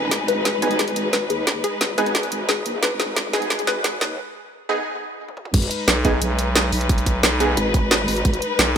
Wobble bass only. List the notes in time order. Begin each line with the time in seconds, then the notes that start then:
Already playing: D#1
0.11 G#1
0.96 G#1
1.30 D#2
1.81 G#1
1.98 G#1
2.32 G#1
2.66 A#1
2.83 G#1
3.67 G#1
4.01 D#2
5.54 G#1
7.57 G#1
8.08 G#1
8.25 G#1